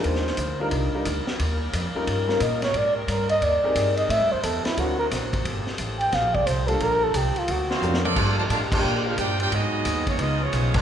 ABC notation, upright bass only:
X:1
M:4/4
L:1/8
Q:"Swing" 1/4=177
K:Gm
V:1 name="Upright bass" clef=bass
E,,2 D,,2 C,, z D,, z | E,,2 F,, z G,,2 B,,2 | _A,,2 G,,2 E,, z G,,2 | (3A,, G,, =E,, E,, z D,,2 ^A,,,2 |
G,,, z A,,,2 B,,,2 C,,2 | B,,,2 C,, z D,,2 ^E,,2 | G,,2 A,,2 B,,2 G,,2 | _A,,2 E,,2 ^C,,2 =B,,,2 |]